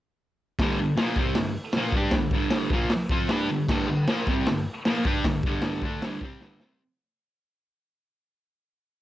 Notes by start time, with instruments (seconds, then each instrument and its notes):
0.59 distorted electric guitar G2 D3 G3, kick, snare, open hi-hat
0.80 distorted electric guitar G2 D3
0.97 distorted electric guitar A#2 F3 A#3, snare, open hi-hat
1.16 distorted electric guitar C3 G3 C4, kick
1.35 distorted electric guitar G2 D3, snare, open hi-hat
1.73 distorted electric guitar A#2, snare, open hi-hat
1.77 distorted electric guitar F3 A#3
1.92 distorted electric guitar G3, kick
1.96 distorted electric guitar D4 G4
2.11 kick, snare, open hi-hat
2.15 distorted electric guitar G2 D3
2.31 distorted electric guitar G2 D3 G3, kick
2.50 snare, open hi-hat
2.70 distorted electric guitar A#2 F3 A#3, kick
2.90 muted distorted electric guitar stroke, snare, open hi-hat
3.09 distorted electric guitar F3 C4 F4, kick
3.29 distorted electric guitar G3 D4 G4, snare, open hi-hat
3.49 distorted electric guitar G2 D3
3.69 distorted electric guitar G2 D3 G3, kick, snare, crash
3.88 distorted electric guitar G2 D3
4.08 distorted electric guitar A#2 F3 A#3, snare, open hi-hat
4.27 distorted electric guitar C3 G3 C4, kick
4.47 distorted electric guitar G2 D3, snare, open hi-hat
4.85 distorted electric guitar A#2 F3 A#3, snare, open hi-hat
5.05 distorted electric guitar G3 D4 G4, kick
5.25 distorted electric guitar G2 D3, kick, snare, open hi-hat
5.44 distorted electric guitar G2 D3, kick
5.48 distorted electric guitar G3
5.62 snare, open hi-hat
5.82 distorted electric guitar D3 A3 D4, kick
6.02 distorted electric guitar G2 D3 G3, snare, open hi-hat
6.21 distorted electric guitar C3 G3 C4, kick
6.41 distorted electric guitar G2 D3 G3, snare
6.60 distorted electric guitar C3 G3 C4, snare